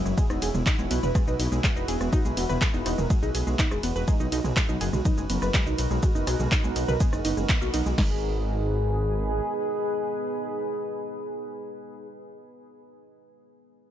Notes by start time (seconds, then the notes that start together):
Already playing: B3 E4 F#4 C#5
0.06 F#1 F#3 G#3 G#4, shaker
0.17 G#3 G#4 B4, kick, ride, shaker
0.30 E1 B3 D#4 D#5, cross-stick, shaker
0.42 E1 G#4 G#5, open hi-hat, ride, shaker
0.54 E1 G#3 B3 G#4, mid tom, shaker
0.66 D#4 D#5, kick, clap, ride, shaker
0.79 E1 G#3 B3 G#4, shaker
0.91 B1 B3 B4, open hi-hat, ride, shaker
1.03 E1 B4 B5, mid tom, shaker
1.15 G#3 B3 G#4, kick, cross-stick, ride, shaker
1.27 B1 D#4 B4 D#5, shaker
1.39 B1 B3 D#4 D#5, open hi-hat, ride, shaker
1.52 B1 G#3 B3 G#4, shaker
1.64 G#3 B3 G#4, kick, clap, ride, shaker
1.76 E1 D#4 B4 D#5, shaker
1.88 E1 B3 G#4 G#5, open hi-hat, ride, shaker
2.00 E1 G#3 B3 G#4, cross-stick, shaker
2.13 D#4 F#4 D#5, kick, ride, shaker
2.25 B1 G#3 B3 G#4, shaker
2.37 E1 B3 F#4 B4, open hi-hat, ride, shaker
2.49 E1 B3 B4 B5, mid tom, shaker
2.61 G#3 G#4, kick, clap, ride, shaker
2.74 E1 B3 D#4 D#5, shaker
2.86 E1 B3 D#4 D#5, cross-stick, open hi-hat, ride, shaker
2.98 E1 G#3 G#4 A#4, mid tom, shaker
3.10 G#3 B3 G#4, kick, ride, shaker
3.22 B1 D#4 G#4 D#5, shaker
3.34 B1 B3 G#4 G#5, open hi-hat, ride, shaker
3.47 B1 G#3 B3 G#4, shaker
3.59 D#4 D#5, kick, clap, ride, shaker
3.71 E1 G#3 G#4, cross-stick, shaker
3.83 E1 B3 B4, open hi-hat, ride, shaker
3.96 E1 B3 B4 B5, shaker
4.07 G#3 D#4 F#4 G#4 A#4 B4, kick, ride, shaker
4.20 B1 F#3 D#4 D#5, shaker
4.32 B1 D#4 D#5, open hi-hat, ride, shaker
4.44 B1 F#3 G#3 G#4, mid tom, shaker
4.57 G#3 G#4, kick, cross-stick, clap, ride, shaker
4.69 B1 F#3 D#4 D#5, shaker
4.81 F#1 F#3 G#4 G#5, open hi-hat, ride, shaker
4.93 B1 G#3 F#4 G#4, mid tom, shaker
5.05 F#3 D#4 D#5, kick, ride, shaker
5.18 F#1 G#3 D#4 G#4, shaker
5.30 F#1 F#3 B3 B4, open hi-hat, ride, shaker
5.42 F#1 F#3 B4 B5, cross-stick, shaker
5.54 F#3 G#3 G#4, kick, clap, ride, shaker
5.66 B1 D#4 D#5, shaker
5.78 B1 F#3 D#4 D#5, open hi-hat, ride, shaker
5.91 B1 F#3 G#3 G#4, shaker
6.03 G#3 F#4 G#4, kick, ride, shaker
6.15 F#1 B3 D#4 D#5, shaker
6.27 B1 F#4 G#4 G#5, cross-stick, open hi-hat, ride, shaker
6.39 B1 G#3 B3 G#4, mid tom, shaker
6.52 D#4 D#5, kick, clap, ride, shaker
6.64 B1 G#3 B3 G#4, shaker
6.76 B1 B3 B4, open hi-hat, ride, shaker
6.88 B1 A#4 B4 B5, mid tom, shaker
7.00 G#3 B3 G#4, kick, ride, shaker
7.13 F#1 D#4 G#4 D#5, cross-stick, shaker
7.25 F#1 B3 D#4 D#5, open hi-hat, ride, shaker
7.37 F#1 G#3 B3 G#4, shaker
7.49 B3 B4, kick, clap, ride, shaker
7.62 B1 A#3 F#4 A#4, shaker
7.74 B1 B3 D#4 D#5, open hi-hat, ride, shaker
7.86 B1 G#3 B3 G#4, shaker
7.98 G#1 G#3 B3 D#4 G#4 B4, kick, snare, crash